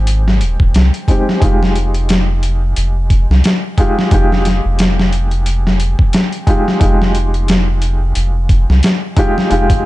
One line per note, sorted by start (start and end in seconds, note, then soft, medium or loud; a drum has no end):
0.00 0.42 G#1 medium
0.00 1.08 G#3 medium
0.00 1.09 C4 medium
0.00 1.10 D#4 medium
0.00 1.11 G4 medium
0.07 closed hi-hat medium
0.28 snare soft
0.41 0.57 D#1 medium
0.41 closed hi-hat medium
0.60 0.73 D#1 medium
0.60 kick medium
0.74 0.91 C2 medium
0.74 snare loud
0.74 closed hi-hat medium
0.94 closed hi-hat soft
1.08 1.21 G#3 medium
1.08 1.21 C4 medium
1.08 1.22 D#4 medium
1.08 1.22 G4 medium
1.08 kick medium
1.08 closed hi-hat medium
1.29 snare soft
1.40 2.74 F1 loud
1.40 3.73 G#3 medium
1.40 3.74 D#4 medium
1.40 3.75 F4 medium
1.40 kick loud
1.40 closed hi-hat medium
1.46 3.76 G4 medium
1.63 snare soft
1.76 closed hi-hat medium
1.94 closed hi-hat soft
2.09 snare loud
2.09 closed hi-hat medium
2.43 closed hi-hat medium
2.76 3.26 F1 medium
2.76 closed hi-hat medium
3.10 kick medium
3.10 closed hi-hat medium
3.30 3.42 C2 medium
3.30 snare soft
3.44 snare loud
3.44 closed hi-hat medium
3.78 4.08 G#3 medium
3.78 4.08 D#4 medium
3.78 4.09 F4 medium
3.78 4.09 G4 medium
3.78 kick medium
3.78 closed hi-hat medium
3.99 snare soft
4.11 4.61 F1 medium
4.11 4.24 G#3 medium
4.11 4.25 D#4 medium
4.11 4.25 F4 medium
4.11 4.26 G4 medium
4.11 kick loud
4.11 closed hi-hat medium
4.32 snare soft
4.45 snare soft
4.45 closed hi-hat medium
4.65 5.96 F1 medium
4.79 snare loud
4.79 closed hi-hat medium
4.99 snare medium
5.13 closed hi-hat medium
5.31 closed hi-hat soft
5.46 closed hi-hat medium
5.67 snare soft
5.80 closed hi-hat medium
5.99 kick medium
6.13 snare loud
6.13 closed hi-hat medium
6.32 closed hi-hat soft
6.47 6.60 G#3 medium
6.47 6.60 D#4 medium
6.47 6.61 F4 medium
6.47 6.61 G4 medium
6.47 kick medium
6.47 closed hi-hat medium
6.68 snare soft
6.80 8.13 F1 medium
6.80 9.13 G#3 medium
6.80 9.13 D#4 medium
6.80 9.14 F4 medium
6.80 kick loud
6.80 closed hi-hat medium
6.85 9.15 G4 medium
7.02 snare soft
7.15 closed hi-hat medium
7.34 closed hi-hat soft
7.48 snare loud
7.48 closed hi-hat medium
7.82 closed hi-hat medium
8.15 8.65 F1 medium
8.15 closed hi-hat medium
8.49 kick medium
8.49 closed hi-hat medium
8.69 8.81 C2 medium
8.69 snare soft
8.83 snare loud
8.83 closed hi-hat medium
9.16 9.47 G#3 medium
9.16 9.47 D#4 medium
9.16 9.48 F4 medium
9.16 9.48 G4 medium
9.16 kick medium
9.16 closed hi-hat medium
9.38 snare soft
9.50 9.86 F1 loud
9.50 9.63 G#3 medium
9.50 9.64 D#4 medium
9.50 9.64 F4 medium
9.50 9.65 G4 loud
9.50 closed hi-hat medium
9.70 kick medium
9.70 closed hi-hat medium